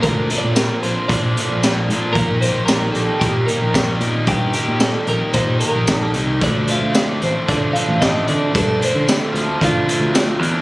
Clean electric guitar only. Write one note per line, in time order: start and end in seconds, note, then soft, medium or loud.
0.03 0.28 A#4 medium
0.38 0.55 D5 loud
0.55 0.82 A#4 medium
0.83 1.08 C5 medium
1.08 1.85 D5 medium
2.13 2.41 A#4 medium
2.41 2.65 C5 medium
2.66 2.92 A#4 medium
2.92 3.22 A4 medium
3.19 3.48 G4 medium
3.46 3.97 A#4 medium
4.28 4.53 G4 medium
4.55 4.83 G4 medium
4.81 5.08 A4 medium
5.08 5.34 A#4 medium
5.34 5.59 C5 loud
5.60 5.97 A#4 medium
5.97 6.10 A4 medium
6.44 6.70 D5 medium
6.71 6.95 F5 medium
6.96 7.23 D5 medium
7.24 7.50 C5 medium
7.49 7.73 D5 loud
7.73 7.99 F5 loud
8.01 8.26 D#5 loud
8.28 8.55 D5 medium
8.58 8.81 A4 loud
8.84 9.08 C5 medium
9.09 9.58 A4 medium
9.64 10.39 F4 medium